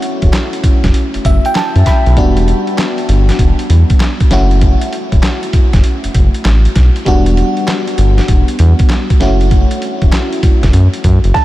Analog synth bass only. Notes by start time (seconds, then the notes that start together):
0.22 E1
0.64 F#1
0.84 F#1
1.14 F#1
1.25 F#1
1.76 F#2
2.06 B1
2.17 E1
3.09 G1
3.39 E1
3.70 E2
4.31 F#1
5.12 E1
5.53 F#1
5.73 F#1
6.04 F#1
6.15 F#1
6.45 A1
6.76 B1
7.06 E1
7.98 G1
8.28 E1
8.59 E2
9.21 F#1
10.02 E1
10.43 F#1
10.63 F#1
10.73 F#2
11.04 F#2
11.24 F#1